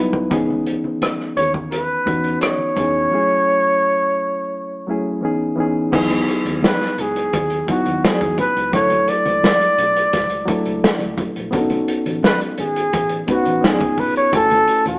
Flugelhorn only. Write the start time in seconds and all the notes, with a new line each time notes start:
1.37 C#5
1.71 B4
2.41 C#5
6.66 B4
7.01 G#4
7.70 F#4
8.05 G#4
8.40 B4
8.75 C#5
9.09 D5
12.25 B4
12.59 G#4
13.31 F#4
13.65 G#4
14.00 B4
14.17 C#5
14.36 A4
14.88 F#4